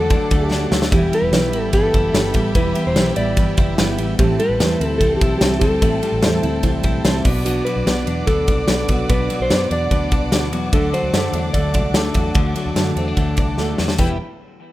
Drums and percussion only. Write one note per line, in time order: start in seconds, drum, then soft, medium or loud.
0.10 kick loud
0.10 ride medium
0.31 kick loud
0.31 ride medium
0.51 snare medium
0.72 snare loud
0.82 snare loud
0.92 kick loud
0.92 ride medium
1.13 ride medium
1.33 snare loud
1.33 ride medium
1.53 ride medium
1.73 kick medium
1.73 ride medium
1.94 kick loud
1.94 ride medium
2.14 snare loud
2.14 ride medium
2.34 kick medium
2.34 ride medium
2.55 kick loud
2.55 ride medium
2.75 ride medium
2.96 snare loud
2.96 ride medium
3.16 ride medium
3.37 kick loud
3.37 ride medium
3.57 kick loud
3.57 ride medium
3.78 snare loud
3.78 ride medium
3.98 ride medium
4.19 kick loud
4.19 ride medium
4.40 ride medium
4.60 snare medium
4.60 ride medium
4.81 ride medium
5.01 kick medium
5.01 ride medium
5.21 kick loud
5.21 ride medium
5.41 snare loud
5.41 ride medium
5.61 kick loud
5.61 ride medium
5.82 kick loud
5.82 ride medium
6.03 ride medium
6.22 snare loud
6.22 ride medium
6.43 ride medium
6.63 kick medium
6.63 ride medium
6.83 kick loud
6.83 ride medium
7.05 snare loud
7.05 ride medium
7.25 kick loud
7.25 open hi-hat medium
7.25 ride medium
7.46 hi-hat pedal medium
7.46 ride medium
7.66 ride medium
7.87 snare medium
7.87 ride medium
8.07 ride medium
8.27 kick medium
8.27 ride medium
8.48 kick loud
8.48 ride medium
8.68 snare loud
8.68 ride medium
8.88 kick medium
8.88 ride medium
9.09 kick loud
9.09 ride medium
9.30 ride medium
9.50 snare loud
9.50 ride medium
9.71 ride medium
9.91 kick medium
9.91 ride medium
10.12 kick loud
10.12 ride medium
10.32 snare loud
10.32 ride medium
10.53 ride medium
10.73 kick loud
10.73 ride medium
10.94 ride medium
11.14 snare loud
11.14 ride medium
11.33 ride medium
11.54 kick medium
11.54 ride medium
11.74 kick loud
11.74 ride medium
11.94 snare loud
11.94 ride medium
12.14 kick loud
12.14 ride medium
12.34 kick loud
12.34 ride medium
12.56 ride medium
12.76 snare medium
12.76 ride medium
12.97 ride medium
13.17 kick medium
13.17 ride medium
13.37 kick loud
13.37 ride medium
13.58 snare medium
13.78 snare medium
13.88 snare medium
13.98 kick loud
13.98 crash medium